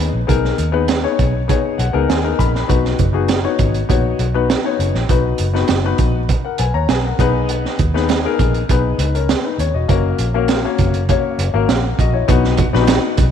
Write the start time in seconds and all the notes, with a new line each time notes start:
Already playing: B3 D#4 G#4 B4
0.00 D#2, closed hi-hat
0.13 A#1
0.27 B1 B3 D#4 G#4 A#4, kick, closed hi-hat
0.45 snare
0.58 D#2, closed hi-hat
0.72 B3 D#4 G#4 B4
0.88 snare, closed hi-hat
1.03 B3 D#4 G#4 C#5
1.19 B1, kick, closed hi-hat
1.48 B3 D#4 G#4 C#5, kick, closed hi-hat
1.78 B1 F#5, closed hi-hat
1.93 C#2 B3 D#4 G#4 A#4
2.09 D#2 G#5, snare, closed hi-hat
2.23 B3 D#4 G#4 A#4
2.39 A#1 B5, kick, closed hi-hat
2.55 snare
2.68 B1 B3 D#4 F#4 B4, kick, closed hi-hat
2.85 snare
2.99 F#1, kick, closed hi-hat
3.13 B3 D#4 F#4 G#4
3.28 snare, closed hi-hat
3.43 B3 D#4 F#4 C#5
3.59 G#1, kick, closed hi-hat
3.74 closed hi-hat
3.89 A#1 B3 D#4 F#4 C#5, kick, closed hi-hat
4.19 B1, closed hi-hat
4.34 B3 D#4 F#4 B4
4.50 snare, closed hi-hat
4.64 B3 D#4 F#4 C#5
4.79 F#1, closed hi-hat
4.94 A#1, snare
5.09 B1 B3 D#4 F#4 B4, kick, closed hi-hat
5.38 F#1, closed hi-hat
5.54 B3 D#4 F#4 B4, snare
5.68 F#1, snare, closed hi-hat
5.84 B3 D#4 F#4 B4
5.98 A#1, kick, closed hi-hat
6.29 kick, closed hi-hat
6.45 A#4 F#5
6.58 B1 B4 G#5, closed hi-hat
6.74 D#2 C#5 A#5
6.89 B1 B4 G#5, snare, closed hi-hat
7.05 A#4 F#5
7.19 B1 B3 D#4 G#4 B4, kick, closed hi-hat
7.49 closed hi-hat
7.65 snare
7.79 D#2, kick, closed hi-hat
7.94 B3 D#4 G#4 B4, snare
8.09 snare, closed hi-hat
8.24 B3 D#4 G#4 A#4
8.39 A#1, kick, closed hi-hat
8.54 closed hi-hat
8.69 B1 B3 D#4 G#4 B4, kick, closed hi-hat
8.98 C#2 D#4 B4, closed hi-hat
9.15 C#4 A#4, closed hi-hat
9.29 B3 G#4, snare, closed hi-hat
9.44 D#4 B4
9.58 D#2 C#5, closed hi-hat
9.74 E1 F#4 D#5
9.88 F#1 A#3 C#4 F#4 A#4, kick, closed hi-hat
10.19 A#1, closed hi-hat
10.34 A#3 C#4 F#4 A#4
10.48 snare, closed hi-hat
10.65 A#3 C#4 F#4 C#5
10.78 F#1, kick, closed hi-hat
10.94 closed hi-hat
11.09 A#3 C#4 F#4 C#5, kick, closed hi-hat
11.38 F#1, closed hi-hat
11.54 G#1 A#3 C#4 F#4 A#4
11.69 A#1 A#4 F#5, snare, closed hi-hat
11.99 A#1 F#4 D#5, kick, closed hi-hat
12.13 E4 C#5
12.28 B1 B3 D#4 F#4 B4, kick, closed hi-hat
12.44 snare
12.57 kick, closed hi-hat
12.73 A#1 B3 D4 F#4 B4, snare
12.80 D#4
12.87 snare, closed hi-hat
13.17 B1, kick, closed hi-hat